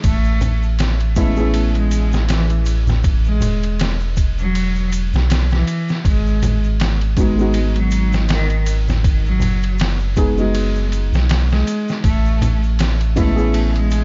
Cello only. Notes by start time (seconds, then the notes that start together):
0.05 A3
1.17 A3
1.76 G#3
2.30 E3
3.27 G#3
4.39 F#3
5.52 E3
6.06 G#3
7.19 G#3
7.77 F#3
8.31 D#3
9.27 F#3
10.40 G#3
11.51 G#3
12.05 A3
13.17 A3
13.76 G#3